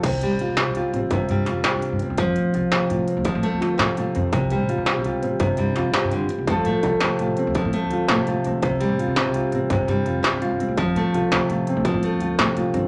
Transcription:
<<
  \new Staff \with { instrumentName = "Nylon-string guitar" } { \time 12/8 \key f \major \tempo 4. = 112 << { r4 f'4 f'8 c'4. f'4 r8 c'8~ | c'4 f'4 f'8 c'4. f'4 f'8 c'8~ | c'4 f'4 f'8 c'4. f'2 | <a f' a'>4 f'4 f'8 c'4. f'4 f'8 c'8~ |
c'4 f'4 f'8 c'4. f'4 f'8 c'8~ | c'4 f'4 f'8 c'4. f'4 f'8 c'8 | } \\ { c8 g4 c4. c8 g4 c4. | f4. c4. f8 a4 c4. | c8 g4 c4. c8 g4 c8 d8 r8 | f8 a4 c4. f8 a4 c4. |
c8 g4 c4. c8 g4 c4. | f8 a4 c4. f8 a4 c4. | } >> }
  \new Staff \with { instrumentName = "Upright bass" } { \clef bass \time 12/8 \key f \major c,8. a,,8 c8 c,8 r16 a,,16 r16 g,16 r16 g,8 f,8 r16 g,8 g,16 r16 e,16 | f,8 a,8 c,16 r16 d,16 r16 a,8 r16 d,16 r16 a,16 r16 d,8. a,16 r16 a,16 r16 f,8 | c,8. a,,8 c8 c,8 r16 a,,16 r16 g,16 r16 g,8 f,8 r16 g,8 g,16 r16 c,16 | f,8 a,8 c,16 r16 d,16 r16 a,8 r16 d,16 r16 a,16 r16 d,8. a,16 r16 a,16 r16 d,8 |
c,8. a,,8 c8 c,8 r16 a,,16 r16 g,16 r16 g,8 f,8 r16 g,8 g,16 r16 a,16 | f,8 a,8 c,16 r16 d,16 r16 a,8 r16 d,16 r16 a,16 r16 d,8. a,16 r16 a,16 r16 g,8 | }
  \new DrumStaff \with { instrumentName = "Drums" } \drummode { \time 12/8 <cymc hh bd>8 hh8 hh8 <hh sn>8 hh8 hh8 <hh bd>8 hh8 <hh sn>8 <hh sn>8 hh8 hh8 | <hh bd>8 hh8 hh8 <hh sn>8 hh8 hh8 <hh bd>8 hh8 <hh sn>8 <hh sn>8 hh8 hh8 | <hh bd>8 hh8 hh8 <hh sn>8 hh8 hh8 <hh bd>8 hh8 <hh sn>8 <hh sn>8 hh8 hh8 | <hh bd>8 hh8 <hh bd>8 <hh sn>8 hh8 hh8 <hh bd>8 hh8 hh8 <hh sn>8 hh8 hh8 |
<hh bd>8 hh8 hh8 <hh sn>8 hh8 hh8 <hh bd>8 hh8 hh8 <hh sn>8 hh8 hh8 | <hh bd>8 hh8 hh8 <hh sn>8 hh8 hh8 <hh bd>8 hh8 hh8 <hh sn>8 hh8 hh8 | }
>>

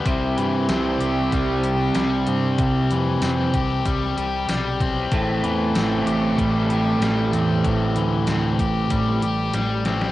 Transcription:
<<
  \new Staff \with { instrumentName = "Overdriven electric guitar" } { \time 4/4 \key c \major \tempo 4 = 95 c8 e8 c'8 g'8 g8 g'8 g8 c'8 | c8 e8 c'8 g'8 g8 g'8 g8 c'8 | a,8 e8 c'8 g'8 g8 g'8 g8 c'8 | a,8 e8 c'8 g'8 g8 g'8 g8 c'8 | }
  \new Staff \with { instrumentName = "Overdriven electric guitar" } { \time 4/4 \key c \major <c g c' e'>1~ | <c g c' e'>1 | <a, e a c' e'>1~ | <a, e a c' e'>1 | }
  \new Staff \with { instrumentName = "Fingered electric bass" } { \clef bass \time 4/4 \key c \major c,8 g,8 c,8 c,8 c,4 c,8 g,8 | c,8 f,8 f,8 c,8 c,8 c,8 b,,4 | a,,8 e,8 a,,8 a,,8 a,,4 a,,8 e,8 | a,,8 d,8 d,8 a,,8 a,,8 a,,8 a,,4 | }
  \new DrumStaff \with { instrumentName = "Drums" } \drummode { \time 4/4 <hh bd>8 hh8 <hh sn tamb>8 hh8 <hh bd>8 hh8 <hh sn tamb>8 hh8 | <hh bd>8 hh8 <hh sn tamb>8 <hh bd>8 <hh bd>8 hh8 <hh sn tamb>8 <hh bd>8 | <hh bd>8 hh8 <hh sn tamb>8 hh8 <hh bd>8 hh8 <hh sn tamb>8 hh8 | <hh bd>8 hh8 <hh sn tamb>8 <hh bd>8 <hh bd>8 hh8 <hh sn>8 <hh sn>16 sn16 | }
>>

